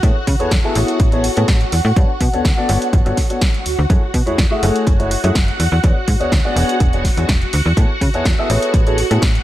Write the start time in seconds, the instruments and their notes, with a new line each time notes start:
Already playing: string machine F#4 F#5
0.03 fm bass A2, grand piano B3 E4 G#4 A4 C#5, kick, closed hi-hat
0.27 fm bass C#3, kick, open hi-hat
0.39 fm bass E2, grand piano B3 E4 G#4 A4 C#5, closed hi-hat
0.51 fm bass E2, kick, snare, closed hi-hat
0.64 grand piano B3 E4 G#4 A4 E5
0.75 fm bass A1, grand piano B3 E4 G#4 A4 C#5, open hi-hat
0.88 closed hi-hat
1.00 fm bass A1, kick, closed hi-hat
1.12 grand piano B3 E4 G#4 A4 C#5, closed hi-hat
1.24 open hi-hat
1.36 fm bass A2, grand piano B3 E4 G#4 A4 C#5, closed hi-hat
1.48 fm bass A1, kick, snare, closed hi-hat
1.61 closed hi-hat
1.72 fm bass E2, open hi-hat
1.85 fm bass A2
1.96 fm bass G2, grand piano B3 D4 F#4 A4 C#5, kick, closed hi-hat
2.21 fm bass B2, kick, open hi-hat
2.33 fm bass D2, grand piano B3 D4 F#4 A4 C#5, closed hi-hat
2.45 fm bass D2, kick, snare, closed hi-hat
2.57 grand piano B3 D4 F#4 A4 D5
2.68 fm bass G1, grand piano B3 D4 F#4 A4 C#5, open hi-hat
2.82 closed hi-hat
2.93 fm bass G1, kick, closed hi-hat
3.05 fm bass G1, grand piano B3 D4 F#4 A4 C#5, closed hi-hat
3.17 kick, snare, open hi-hat
3.30 grand piano B3 D4 F#4 A4 C#5, closed hi-hat
3.41 kick, snare, closed hi-hat
3.54 closed hi-hat
3.66 fm bass D2, open hi-hat
3.79 fm bass D2
3.89 fm bass F#2, grand piano A3 E4 F#4 G#4 C#5, string machine F#4 F#5, kick, closed hi-hat
4.14 fm bass B2, kick, open hi-hat
4.26 fm bass E2, grand piano A3 E4 F#4 G#4 C#5, closed hi-hat
4.38 fm bass E2, kick, snare, closed hi-hat
4.50 grand piano A3 E4 F#4 G#4 E5
4.63 fm bass F#1, grand piano A3 E4 F#4 G#4 C#5, open hi-hat
4.76 closed hi-hat
4.87 fm bass F#1, kick, closed hi-hat
4.99 grand piano A3 E4 F#4 G#4 C#5, closed hi-hat
5.11 open hi-hat
5.23 fm bass F#2, grand piano A3 E4 F#4 G#4 C#5, closed hi-hat
5.35 fm bass F#1, kick, snare, closed hi-hat
5.48 closed hi-hat
5.60 fm bass E2, open hi-hat
5.72 fm bass E2
5.84 fm bass E2, grand piano B3 D4 F#4 G#4 C#5, kick, closed hi-hat
6.08 fm bass G#2, kick, open hi-hat
6.20 fm bass D2, grand piano B3 D4 F#4 G#4 C#5, closed hi-hat
6.32 fm bass D2, kick, snare, closed hi-hat
6.44 grand piano B3 D4 F#4 G#4 D5
6.56 fm bass E1, grand piano B3 D4 F#4 G#4 C#5, open hi-hat
6.69 closed hi-hat
6.80 fm bass E1, kick, closed hi-hat
6.93 grand piano B3 D4 F#4 G#4 C#5, closed hi-hat
7.04 kick, snare, open hi-hat
7.17 fm bass E2, grand piano B3 D4 F#4 G#4 C#5, closed hi-hat
7.29 fm bass E1, kick, snare, closed hi-hat
7.42 closed hi-hat
7.53 fm bass D2, open hi-hat
7.66 fm bass E2
7.77 fm bass A2, grand piano B3 E4 G#4 A4 C#5, kick, closed hi-hat
8.01 fm bass C#3, kick, open hi-hat
8.14 fm bass E2, grand piano B3 E4 G#4 A4 C#5, closed hi-hat
8.25 fm bass E2, kick, snare, closed hi-hat
8.38 grand piano B3 E4 G#4 A4 E5
8.50 fm bass A1, grand piano B3 E4 G#4 A4 C#5, open hi-hat
8.62 closed hi-hat
8.74 fm bass A1, kick, closed hi-hat
8.86 grand piano B3 E4 G#4 A4 C#5, closed hi-hat
8.98 open hi-hat
9.10 fm bass A2, grand piano B3 E4 G#4 A4 C#5, closed hi-hat
9.22 fm bass A1, kick, snare, closed hi-hat
9.35 closed hi-hat